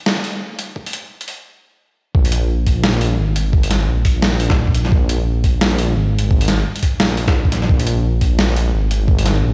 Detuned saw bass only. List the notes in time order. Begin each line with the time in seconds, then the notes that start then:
2.15 A#1
3.19 G#1
3.88 A#1
4.92 A#1
5.96 G#1
7.00 A#1
7.69 A#1
8.74 G#1
9.43 A#1